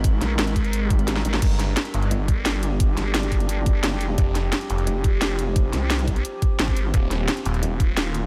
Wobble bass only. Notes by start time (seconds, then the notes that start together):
Already playing: G#1
0.21 A#1
0.39 G#1
1.25 G#1
2.11 G1
2.97 G1
3.81 F#1
4.05 F1
4.87 F1
5.73 C2
6.59 G#1
7.63 D#1